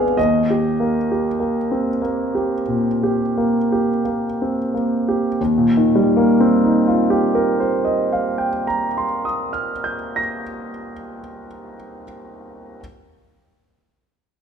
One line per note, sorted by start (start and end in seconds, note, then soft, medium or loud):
0.00 0.18 D#2 soft
0.00 0.18 B3 soft
0.00 0.18 D4 soft
0.00 0.18 G#4 soft
0.00 0.16 F5 medium
0.00 0.18 G#5 medium
0.17 2.62 D#2 soft
0.17 4.02 D#5 medium
0.50 0.96 G4 soft
0.80 1.26 A#3 soft
1.12 1.57 G4 soft
1.40 1.88 A#3 soft
1.72 2.01 C4 soft
2.02 2.52 A#3 soft
2.35 2.87 G4 soft
2.68 3.20 A#2 soft
3.03 3.55 G4 soft
3.38 3.89 A#3 soft
3.72 4.24 G4 soft
4.05 4.58 A#3 soft
4.42 4.74 C4 soft
4.74 5.27 A#3 soft
5.08 5.40 G4 soft
5.41 8.48 D#2 soft
5.58 8.66 A#2 soft
5.77 8.85 D#3 soft
5.96 9.03 G3 soft
6.17 9.25 A#3 soft
6.40 9.48 C4 soft
6.64 9.72 D#4 soft
6.88 9.96 F4 soft
7.10 10.18 G4 soft
7.35 10.43 A#4 soft
7.60 10.68 C5 soft
7.85 10.93 D#5 soft
8.13 11.20 F5 soft
8.38 11.46 G5 soft
8.67 11.75 A#5 soft
8.98 12.04 C6 soft
9.25 12.03 D#6 soft
9.53 12.03 F6 soft
9.84 12.03 G6 soft
10.16 12.04 A#6 soft